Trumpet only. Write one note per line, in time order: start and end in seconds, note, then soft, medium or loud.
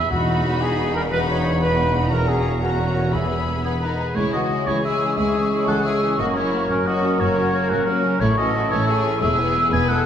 0.11 0.63 F#4 medium
0.61 0.94 G#4 medium
0.95 1.02 A#4 medium
1.11 1.19 B4 medium
1.28 1.60 C#5 medium
1.61 1.93 B4 medium
2.12 2.30 A#4 medium
2.29 2.62 G#4 medium
2.62 3.13 F#4 medium
3.14 3.64 E4 medium
4.16 6.15 G#4 soft
6.19 8.17 A#4 soft
8.22 9.18 A4 soft
9.21 10.06 G#4 medium